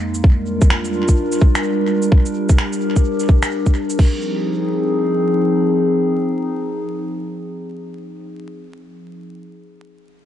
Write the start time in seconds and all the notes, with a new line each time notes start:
Already playing: F2 G#3 A#3 D#4
0.14 shaker
0.24 G3 D4 F4 A#4, kick
0.61 kick, shaker
0.70 finger snap
0.85 shaker
1.08 kick, shaker
1.32 shaker
1.41 kick
1.55 finger snap, shaker
2.02 shaker
2.12 G4, kick
2.26 shaker
2.49 kick, shaker
2.58 finger snap
2.73 shaker
2.96 kick, shaker
3.19 shaker
3.29 kick
3.43 finger snap, shaker
3.66 kick, shaker
3.90 shaker
3.99 F3 C4 D#4 G#4, kick, crash